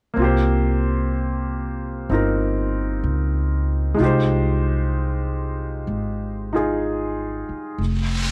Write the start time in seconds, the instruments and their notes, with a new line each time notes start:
0.14 upright bass C2, grand piano A#3 C4
0.19 grand piano F4 G4
0.24 grand piano C5
2.09 upright bass G1, grand piano C4 D#4 F4 A#4
3.04 upright bass C#2
3.94 grand piano G#3 D#4
3.99 upright bass C2, grand piano F4
4.03 grand piano G4 C5
5.87 upright bass G#1
6.53 grand piano D#4 F4 G#4
7.49 muted upright bass stroke
7.78 upright bass F1, brush sweep